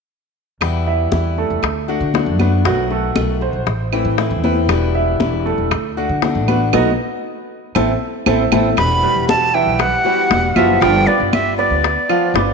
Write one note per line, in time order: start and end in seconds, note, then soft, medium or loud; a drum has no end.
0.61 1.09 E2 medium
0.61 1.11 B2 medium
0.61 1.10 E3 medium
0.61 1.11 G3 medium
0.61 1.11 B3 medium
0.61 1.12 E4 medium
0.61 high bongo medium
0.61 high conga soft
0.61 claves medium
0.87 1.29 E4 medium
0.87 1.29 E5 medium
0.87 high conga soft
1.12 1.48 E2 medium
1.12 1.62 E3 soft
1.12 1.62 G3 soft
1.12 1.62 B3 medium
1.12 1.63 E4 soft
1.12 high bongo medium
1.12 high conga medium
1.38 1.80 A3 medium
1.38 1.80 A4 medium
1.38 high conga soft
1.50 1.62 E2 medium
1.62 1.99 D2 medium
1.62 muted steel-string acoustic guitar stroke medium
1.62 high bongo medium
1.62 high conga soft
1.62 claves medium
1.88 2.13 A3 soft
1.88 2.13 D4 medium
1.88 2.13 F#4 medium
1.88 2.31 F#4 medium
1.88 2.31 F#5 medium
1.88 high conga soft
2.01 2.28 D3 medium
2.14 2.38 D3 soft
2.14 2.38 A3 medium
2.14 2.39 D4 medium
2.14 2.38 F#4 medium
2.14 high bongo medium
2.14 low bongo medium
2.14 high conga medium
2.26 2.63 F#2 medium
2.39 2.64 A3 medium
2.39 2.61 B3 medium
2.39 2.64 D4 medium
2.39 2.64 F#4 medium
2.39 2.61 B4 medium
2.39 high conga medium
2.39 claves medium
2.64 3.13 B1 medium
2.64 3.15 B2 medium
2.64 3.14 D#3 medium
2.64 2.86 F#3 medium
2.64 3.15 A3 medium
2.64 3.15 B3 medium
2.64 2.86 F#4 medium
2.64 3.15 F#4 medium
2.64 high bongo medium
2.64 high conga soft
2.90 3.33 A3 medium
2.90 3.33 A4 medium
2.90 high bongo soft
2.90 high conga soft
3.15 3.52 B1 medium
3.15 3.66 D#3 soft
3.15 3.65 A3 soft
3.15 3.66 B3 soft
3.15 3.66 F#4 soft
3.15 high bongo medium
3.15 high conga medium
3.15 claves medium
3.41 3.84 C5 medium
3.41 high bongo soft
3.41 high conga soft
3.53 3.66 B1 medium
3.66 4.03 A1 medium
3.66 muted steel-string acoustic guitar stroke medium
3.66 high bongo medium
3.66 high conga soft
3.92 4.35 E3 medium
3.92 4.17 A3 soft
3.92 4.17 C4 medium
3.92 4.17 E4 medium
3.92 4.35 E4 medium
3.92 high conga soft
3.92 claves medium
4.05 4.32 A2 medium
4.18 4.42 E3 medium
4.18 4.43 A3 medium
4.18 4.43 C4 medium
4.18 4.42 E4 medium
4.18 high bongo medium
4.18 low bongo medium
4.18 high conga soft
4.30 4.67 E2 medium
4.43 4.69 A3 soft
4.43 4.86 B3 medium
4.43 4.68 C4 medium
4.43 4.68 E4 medium
4.43 4.86 B4 medium
4.43 high bongo soft
4.43 high conga medium
4.69 5.17 E1 loud
4.69 5.19 B2 medium
4.69 5.19 E3 medium
4.69 5.19 G3 medium
4.69 5.20 B3 medium
4.69 5.20 E4 medium
4.69 high bongo medium
4.69 high conga soft
4.69 claves medium
4.95 5.37 E4 medium
4.95 5.37 E5 medium
4.95 high conga soft
5.20 5.56 E1 medium
5.20 5.70 E3 medium
5.20 5.70 G3 soft
5.20 5.70 B3 medium
5.20 5.71 E4 medium
5.20 high bongo medium
5.20 high conga medium
5.45 5.87 A3 medium
5.45 5.88 A4 medium
5.45 high conga soft
5.58 5.70 E1 medium
5.71 6.07 D2 medium
5.71 muted steel-string acoustic guitar stroke medium
5.71 high bongo medium
5.71 high conga soft
5.71 claves medium
5.97 6.22 A3 soft
5.97 6.22 D4 medium
5.97 6.21 F#4 medium
5.97 6.39 F#4 medium
5.97 6.39 F#5 medium
5.97 high conga soft
6.09 6.36 D3 medium
6.22 6.47 D3 soft
6.22 6.47 A3 medium
6.22 6.48 D4 medium
6.22 6.47 F#4 medium
6.22 high bongo medium
6.22 low bongo medium
6.22 high conga medium
6.35 6.71 A1 medium
6.48 6.72 A3 soft
6.48 6.69 B3 medium
6.48 6.73 D4 medium
6.48 6.72 F#4 medium
6.48 6.69 B4 medium
6.48 high conga medium
6.48 claves medium
6.73 6.92 B1 medium
6.73 6.90 A3 medium
6.73 6.90 B3 medium
6.73 6.90 D#4 loud
6.73 6.90 D#4 medium
6.73 6.90 F#4 medium
6.73 low bongo medium
6.73 high conga medium
6.73 claves loud
7.75 7.94 A1 medium
7.75 7.92 E3 medium
7.75 7.92 A3 medium
7.75 7.91 C4 medium
7.75 7.92 C4 medium
7.75 7.92 E4 medium
7.75 7.91 A4 medium
7.75 low bongo medium
7.75 high conga medium
7.75 claves medium
8.26 8.45 A1 medium
8.26 8.43 E3 medium
8.26 8.43 A3 medium
8.26 8.43 C4 medium
8.26 8.43 E4 medium
8.26 8.43 A4 medium
8.26 low bongo medium
8.26 high conga medium
8.26 claves medium
8.52 8.71 A1 medium
8.52 8.69 E3 medium
8.52 8.69 A3 medium
8.52 8.68 C4 medium
8.52 8.69 E4 medium
8.52 8.69 A4 medium
8.52 low bongo medium
8.52 high conga medium
8.52 claves medium
8.77 9.02 E1 medium
8.77 9.27 B2 medium
8.77 9.26 E3 medium
8.77 9.27 G3 medium
8.77 9.28 B3 medium
8.77 9.28 F#4 medium
8.77 9.25 B5 loud
8.77 high bongo medium
8.77 high conga soft
8.77 claves medium
9.03 9.45 G3 medium
9.03 9.45 B4 medium
9.03 high conga soft
9.16 9.64 E1 medium
9.28 9.78 E3 soft
9.28 9.78 G3 soft
9.28 9.78 B3 soft
9.28 9.79 F#4 medium
9.28 9.56 A5 loud
9.28 high bongo medium
9.28 high conga medium
9.54 9.75 E3 medium
9.54 9.75 E4 medium
9.54 9.75 E5 medium
9.54 9.81 G5 medium
9.54 high conga soft
9.66 9.91 B1 medium
9.79 10.01 G3 medium
9.79 10.01 G4 medium
9.79 10.01 B4 medium
9.79 10.58 F#5 loud
9.79 muted steel-string acoustic guitar stroke soft
9.79 high bongo medium
9.79 high conga soft
9.79 claves medium
10.05 10.30 E3 medium
10.05 10.47 G3 medium
10.05 10.30 G3 medium
10.05 10.30 B3 soft
10.05 10.29 F#4 medium
10.05 10.47 G4 medium
10.05 10.47 B4 medium
10.05 high conga soft
10.30 10.55 E1 medium
10.30 10.55 E3 soft
10.30 10.56 G3 medium
10.30 10.56 B3 medium
10.30 10.55 F#4 medium
10.30 high bongo medium
10.30 low bongo medium
10.30 high conga medium
10.56 10.80 F#1 medium
10.56 10.82 E3 soft
10.56 10.77 F3 medium
10.56 10.80 G3 medium
10.56 10.81 B3 medium
10.56 10.77 F4 medium
10.56 10.81 F#4 medium
10.56 10.82 E5 medium
10.56 10.78 F5 medium
10.56 high conga medium
10.56 claves medium
10.81 11.06 G1 loud
10.81 11.03 F3 medium
10.81 11.32 G3 medium
10.81 11.32 B3 medium
10.81 11.03 F4 medium
10.81 11.32 F4 medium
10.81 11.03 F5 medium
10.81 11.08 G5 medium
10.81 high bongo medium
10.81 high conga soft
11.07 11.49 B3 medium
11.07 11.49 B4 medium
11.07 11.32 D5 medium
11.07 11.50 D5 medium
11.07 high bongo soft
11.07 high conga soft
11.20 11.68 G1 medium
11.33 11.83 G3 medium
11.33 11.83 B3 medium
11.33 11.84 F4 soft
11.33 11.56 E5 medium
11.33 high bongo medium
11.33 high conga medium
11.33 claves medium
11.57 12.00 B3 medium
11.57 12.00 B4 medium
11.57 12.54 D5 medium
11.57 12.01 D5 medium
11.57 high bongo soft
11.57 high conga soft
11.70 11.95 D2 medium
11.84 muted steel-string acoustic guitar stroke medium
11.84 high bongo medium
11.84 high conga soft
12.09 12.30 F3 medium
12.09 12.34 B3 medium
12.09 12.34 F4 medium
12.09 12.30 F4 medium
12.09 12.31 F5 medium
12.09 high conga soft
12.09 claves medium
12.34 12.54 G1 medium
12.34 12.54 G3 soft
12.34 12.54 B3 medium
12.34 12.54 F4 medium
12.34 12.54 B4 medium
12.34 12.54 D5 medium
12.34 high bongo medium
12.34 low bongo medium
12.34 high conga soft